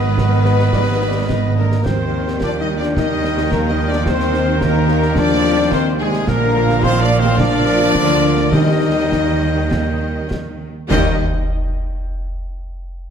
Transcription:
Already playing: G#1 G#2 D#3 B3 B4 D#5
0.17 B4, concert bass drum, snare
0.45 snare
0.59 snare
0.73 D5, concert bass drum, snare
0.91 D#5
1.08 D5
1.27 D#5, concert bass drum, snare
1.57 D3 A#3 A#4
1.72 snare
1.84 D#2 D#3 G3 A#3 C4 A#4 C5 G5, concert bass drum, snare, crash
2.28 snare
2.41 F3 D4 D5, concert bass drum, snare
2.59 G3 D#4 D#5
2.77 F3 D4 D5
2.83 snare
2.94 G3 A#3 D#4 D#5, concert bass drum, snare
3.24 snare
3.38 snare
3.50 D#3 G3 A#3 A#4, concert bass drum, snare
3.68 G3 D#4 D#5
3.87 F3 D4 D5
3.93 snare
4.05 D#3 C4 C5, concert bass drum, snare
4.20 snare
4.34 snare
4.59 D#3 A#3 A#4, concert bass drum, snare
4.63 G3 A#4
4.88 snare
5.02 snare
5.14 F3 D4 D5, concert bass drum, snare
5.19 D5
5.70 D#3 C4 C5, concert bass drum, snare
5.75 C5
5.99 C3 G#3 G#4
6.03 G#4
6.13 snare
6.27 A#1 A#2 D3 F3 A#3 A#4 F5, concert bass drum, snare
6.69 snare
6.80 D#3 C4 C5, concert bass drum, snare
7.00 F3 D4 D5
7.17 D#3 C4 C5
7.24 snare
7.37 F3 A#3 D4 D5, concert bass drum, snare
7.66 snare
7.80 snare
7.95 D2 D3, concert bass drum, snare
8.37 snare
8.52 D#2 D#3 G3 A#3 D#4 D#5 G5, concert bass drum, snare
9.12 concert bass drum, snare
9.71 concert bass drum, snare
10.31 concert bass drum, snare
10.90 D#2 D#3 G3 A#3 D#4 A#4 D#5 G5, concert bass drum, snare, crash

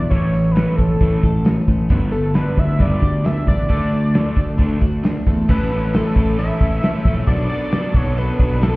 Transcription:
Already playing: G3 B3 E4 F#4
0.10 A1 A2 E3 A3 C#5, kick, open hi-hat
0.33 A2 E3, open hi-hat
0.51 A2 E3 B4
0.56 A3 C#4, snare, open hi-hat
0.76 A1 A2 E3 A4, kick, open hi-hat
1.00 A1 A2 E3 A3, kick, open hi-hat
1.23 A1 A2 E3 A4, kick, open hi-hat
1.45 A2 E3 C#4, snare, open hi-hat
1.68 A1 A2 E3 A3, kick, open hi-hat
1.89 G1 G2 D3 G3 B3, kick, open hi-hat
2.11 G2 D3 A4, open hi-hat
2.34 G2 D3 G3 D4 B4, snare, open hi-hat
2.56 D2 G2 D3 B3 E5, kick, open hi-hat
2.78 G1 G2 D3 G3 B3 D5, kick, open hi-hat
3.01 D2 G2 D3 G4, kick, open hi-hat
3.24 G2 D3 D4 E5, snare, open hi-hat
3.47 A1 G2 D3 B3 D5, kick, open hi-hat
3.69 D2 D3 A3 D4, kick, open hi-hat
3.92 D3 A3, open hi-hat
4.14 D3 A3 D4, snare, open hi-hat
4.36 D2 D3 A3, kick, open hi-hat
4.58 D2 D3 A3 D4, kick, open hi-hat
4.80 D2 D3 A3 F#4, kick, open hi-hat
5.03 D3 A3 D4, snare, open hi-hat
5.26 E2 D3 A3, kick, open hi-hat
5.48 A1 A2 E3 A3 C#4 E4 A4 B4, kick, crash
5.69 A2 E3 A3 C#4 E4, open hi-hat
5.74 A4
5.93 A2 E3 A3 C#4 E4 A4, snare, open hi-hat
6.15 A1 A2 E3 A3 C#4 E4 A4, kick, open hi-hat
6.38 A2 E3 A3 C#4 E4 A4 E5, open hi-hat
6.60 A1 A2 E3 A3 C#4 E4 A4, kick, open hi-hat
6.82 A2 E3 A3 C#4 E4 A4, snare, open hi-hat
7.05 A#1 A2 E3 A3 C#4 E4 A4, kick, open hi-hat
7.27 B1 B2 F#3 B3 D4 F#4 A4 D5, kick, open hi-hat
7.49 B2 F#3 B3 D4 F#4 A4 D5, open hi-hat
7.71 B2 F#3 B3 D4 F#4 A4, snare, open hi-hat
7.93 B1 B2 F#3 B3 D4 F#4 A4 C#5, kick, open hi-hat
8.14 B2 F#3 B3 D4 F#4 B4, open hi-hat
8.18 A4
8.37 B1 B2 F#3 B3 D4 F#4 A4, kick, open hi-hat
8.61 B2 F#3 B3 D4 F#4 A4, snare, open hi-hat

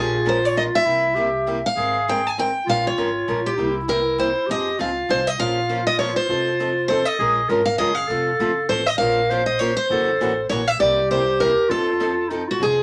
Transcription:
Already playing: A#1 F3 G#3 C#4 F4 A#4
0.00 G#4
0.25 F3 G#3 C#4 F4 A#4 C5
0.45 C#5
0.56 F3 G#3 C#4 F4 A#4 D#5
0.75 E5
0.85 C2 C3 G3 A#3 E4 G4
1.15 C3 G3 A#3 E4 G4
1.47 C3 G3 A#3 E4 G4
1.66 F5
1.76 G#1 G#3 C4 D#4 G#4 A#4
2.08 G#3 C4 D#4 A#4 G5
2.27 G#5
2.38 G#3 C4 D#4 A#4 G5
2.66 A#1 F3 G#3 C#4 F4 A#4 F5
2.87 C#5
2.98 G#1 F3 G#3 C#4 F4 A#4
3.28 A#1 F3 G#3 C#4 F4 A#4
3.46 G4
3.57 C2 C3 G3 A#3 E4 G4
3.88 C3 G3 A#3 E4 G4 A#4
4.18 C3 G3 A#3 E4 G4 C5
4.47 F2 F3 C4 D#4 G4 G#4 D#5
4.79 C#2 F3 C4 D#4 F4 G#4 F5
5.09 C2 F3 C4 D#4 G#4 C5
5.27 D#5
5.39 A#1 F3 A#3 C#4 F4 C5 F5
5.69 F3 A#3 C#4 F4 C5
5.87 D#5
5.99 F3 A#3 C#4 F4 C5 C#5
6.16 C5
6.29 F1 F3 C4 D#4 F4 A4
6.60 F3 C4 D#4 A4
6.88 F3 C4 D#4 A4 C5
7.05 D#5
7.19 A#1 F3 G#3 C#4 F4 G#4 A#4
7.49 G#1 F3 G#3 C#4 F4 A#4
7.65 F5
7.78 F#1 F3 G#3 C#4 F4 G#4 A#4 D#5
7.95 F5
8.08 F1 F3 A3 C4 F4 A4
8.39 F#1 F3 A3 C4 F4 A4
8.69 A1 F3 A3 C4 F4 A4 C5
8.86 D#5
8.98 A#1 F3 A#3 C#4 F4 A#4 C5 F5
9.30 F3 A#3 C#4 F4 C5
9.46 D#5
9.59 F3 A#3 C#4 F4 C5 C#5
9.77 C5
9.90 F#1 C#3 E3 A#3 C#4 F#4 A4
10.20 A1 C#3 E3 A#3 C#4 F#4
10.49 A#1 C#3 E3 A#3 C#4 F#4 C#5
10.68 E5
10.80 C2 C3 G3 A#3 E4 G4 D5
11.11 C3 G3 A#3 E4 G4 C5
11.40 C3 G3 A#3 E4 G4 A#4
11.69 F2 F3 C4 D#4 F4 A4
12.00 F3 C4 D#4 A4
12.29 F3 C4 D#4 A4
12.48 F4 F#4
12.60 F1 F3 C4 D#4 G#4

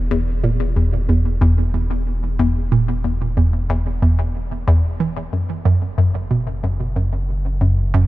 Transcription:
Already playing: E1
0.11 E2
0.44 A#2
0.76 E2
1.09 E2
1.41 E2
1.74 E2
2.39 E2
2.72 A#2
3.04 E2
3.37 E2
3.69 E2
4.02 E2
4.68 E2
5.00 E3
5.33 F#1 F#2
5.65 F#2
5.98 F#2
6.31 B2
6.63 F#2
6.96 F#2
7.61 F#2
7.94 F#2

